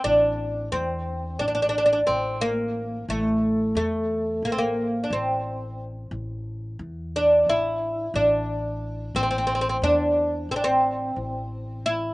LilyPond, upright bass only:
\new Staff \with { instrumentName = "Upright bass" } { \clef bass \time 9/8 \tempo 4. = 59 a,,4 e,4 a,,4 a,,4. | a,,4 e,4 a,,4 a,,4. | a,,4 e,4 a,,4 a,,4. | a,,4 e,4 a,,4 a,,4. | }